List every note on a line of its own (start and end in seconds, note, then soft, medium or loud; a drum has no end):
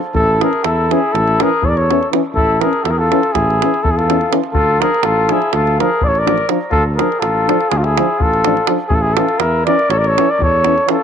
0.13 0.41 A1 loud
0.13 0.39 E4 medium
0.13 0.39 A4 loud
0.13 davul low medium
0.39 0.48 E3 medium
0.39 0.50 C#4 medium
0.39 0.65 G#4 medium
0.39 davul high medium
0.43 0.66 A#4 medium
0.53 davul high soft
0.63 0.92 E2 medium
0.63 0.93 E4 medium
0.63 0.94 A4 medium
0.63 davul high medium
0.89 0.99 E3 medium
0.89 1.00 C#4 medium
0.89 1.16 E4 medium
0.89 1.14 G#4 medium
0.89 davul high medium
1.13 1.41 A1 loud
1.13 1.44 E4 medium
1.13 1.44 A4 loud
1.13 davul high medium
1.28 davul high soft
1.40 1.50 E3 medium
1.40 1.49 C#4 medium
1.40 1.67 G#4 medium
1.40 1.66 A#4 medium
1.40 davul high medium
1.62 2.01 E2 medium
1.62 1.71 A4 medium
1.62 1.70 C#5 medium
1.62 davul low medium
1.69 1.82 A#4 medium
1.69 1.78 D5 medium
1.77 2.09 A4 medium
1.77 2.08 C#5 medium
1.77 davul high soft
1.90 1.99 E3 medium
1.90 1.99 C#4 medium
1.90 davul high medium
2.03 davul high soft
2.12 2.21 E3 medium
2.12 2.21 C#4 medium
2.12 davul high medium
2.33 2.61 A1 medium
2.33 2.62 E4 medium
2.33 2.62 A4 medium
2.33 davul low medium
2.59 2.68 E3 medium
2.59 2.72 C#4 medium
2.59 2.86 G#4 medium
2.59 2.84 A#4 medium
2.59 davul high medium
2.73 davul high soft
2.83 3.12 E2 medium
2.83 2.92 E4 medium
2.83 2.91 A4 medium
2.83 davul high medium
2.90 3.00 G#4 medium
2.90 3.00 A#4 medium
2.98 3.34 F4 medium
2.98 3.33 A4 loud
3.11 3.20 E3 medium
3.11 3.21 C#4 medium
3.11 davul high medium
3.23 davul high soft
3.32 3.62 A1 loud
3.32 3.81 E4 medium
3.32 3.85 G#4 medium
3.32 davul high medium
3.32 davul low medium
3.50 davul high soft
3.62 3.71 E3 medium
3.62 3.71 C#4 soft
3.62 davul high medium
3.74 davul high soft
3.81 4.22 E2 medium
3.81 3.90 E4 medium
3.81 3.92 A4 medium
3.81 davul low medium
3.90 3.97 E4 medium
3.90 3.99 G#4 medium
3.96 4.35 F4 medium
3.96 4.36 A4 medium
3.96 davul high soft
4.07 4.16 E3 medium
4.07 4.17 C#4 medium
4.07 davul high medium
4.21 davul high soft
4.31 4.40 E3 medium
4.31 4.40 C#4 medium
4.31 davul high medium
4.44 davul high soft
4.52 4.81 D2 medium
4.52 4.83 F4 medium
4.52 4.82 A4 loud
4.52 davul low medium
4.79 4.88 F3 soft
4.79 4.90 D4 soft
4.79 5.05 G#4 medium
4.79 5.06 A#4 medium
4.79 davul high medium
4.94 davul high soft
5.03 5.30 A1 medium
5.03 5.32 F4 medium
5.03 5.33 A4 medium
5.03 davul high medium
5.29 5.39 F3 medium
5.29 5.39 D4 medium
5.29 5.56 E4 medium
5.29 5.54 G#4 medium
5.29 davul high medium
5.42 davul high soft
5.52 5.80 D2 loud
5.52 5.80 F4 medium
5.52 5.79 A4 medium
5.52 davul high medium
5.67 davul high soft
5.79 5.89 F3 medium
5.79 5.88 D4 medium
5.79 6.08 G#4 medium
5.79 6.05 A#4 medium
5.79 davul high medium
6.01 6.41 A1 medium
6.01 6.10 D5 medium
6.01 davul low medium
6.07 6.10 A4 medium
6.07 6.20 A4 medium
6.07 6.20 C#5 medium
6.15 6.48 A#4 medium
6.15 6.48 D5 medium
6.15 davul high soft
6.25 6.36 F3 medium
6.25 6.35 D4 medium
6.25 davul high medium
6.38 davul high soft
6.49 6.58 F3 medium
6.49 6.58 D4 medium
6.49 davul high medium
6.70 6.99 D2 medium
6.70 6.83 F4 medium
6.70 6.83 A4 loud
6.70 davul low medium
6.95 7.08 D4 medium
6.95 7.21 G#4 medium
6.95 7.21 A#4 medium
6.95 davul high medium
6.99 7.08 F3 medium
7.12 davul high soft
7.19 7.49 A1 medium
7.19 7.69 F4 medium
7.19 7.70 A4 medium
7.19 davul high medium
7.48 7.58 F3 medium
7.48 7.57 D4 medium
7.48 davul high medium
7.61 davul high soft
7.69 7.99 D2 loud
7.69 7.77 F4 medium
7.69 7.79 G#4 medium
7.69 davul high medium
7.75 7.83 D4 medium
7.75 7.86 F4 medium
7.81 8.19 E4 medium
7.81 8.24 G#4 medium
7.81 davul high soft
7.97 8.08 F3 medium
7.97 8.06 D4 medium
7.97 davul high medium
8.17 8.59 A1 medium
8.17 8.72 F4 medium
8.17 davul low medium
8.22 8.75 A4 medium
8.34 davul high soft
8.45 8.54 F3 medium
8.45 8.55 D4 medium
8.45 davul high medium
8.57 davul high soft
8.67 8.77 F3 medium
8.67 8.77 D4 medium
8.67 davul high medium
8.87 9.18 A1 loud
8.87 8.97 E4 medium
8.87 8.96 G#4 loud
8.87 davul low loud
8.94 9.04 F4 medium
8.94 9.03 A4 medium
9.01 9.17 E4 medium
9.01 9.15 G#4 medium
9.14 9.26 E3 medium
9.14 9.26 C#4 medium
9.14 9.42 F4 medium
9.14 9.40 A4 medium
9.14 davul high medium
9.29 davul high soft
9.38 9.67 E2 medium
9.38 9.65 E4 medium
9.38 9.65 A#4 medium
9.38 davul high medium
9.66 9.75 E3 medium
9.66 9.77 C#4 medium
9.66 9.92 A#4 medium
9.66 9.91 D5 loud
9.66 davul high medium
9.79 davul high soft
9.89 10.16 A1 loud
9.89 10.00 A4 medium
9.89 10.00 C#5 medium
9.89 davul high medium
9.98 10.10 A#4 medium
9.98 10.08 D5 medium
10.04 10.31 C#5 medium
10.04 davul high soft
10.09 10.33 A4 medium
10.17 10.27 E3 medium
10.17 10.26 C#4 medium
10.17 davul high medium
10.30 10.44 A#4 medium
10.30 10.44 D5 medium
10.39 10.77 E2 medium
10.39 davul low medium
10.43 10.86 A4 medium
10.43 10.89 C#5 loud
10.64 10.74 E3 medium
10.64 10.74 C#4 medium
10.64 davul high medium
10.78 davul high soft
10.87 10.96 E3 medium
10.87 10.97 C#4 medium
10.87 11.03 F4 medium
10.87 11.03 A4 medium
10.87 davul high medium